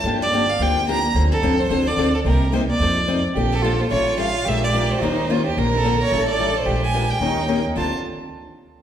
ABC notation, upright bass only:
X:1
M:4/4
L:1/8
Q:"Swing" 1/4=218
K:Dm
V:1 name="Upright bass" clef=bass
G,,,4 D,,4 | D,,2 F,,2 E,,2 D,,2 | C,,4 F,,4 | B,,,4 A,,,4 |
B,,,4 _E,,4 | B,,,4 A,,,4 | B,,,4 _E,,4 | D,, z6 z |]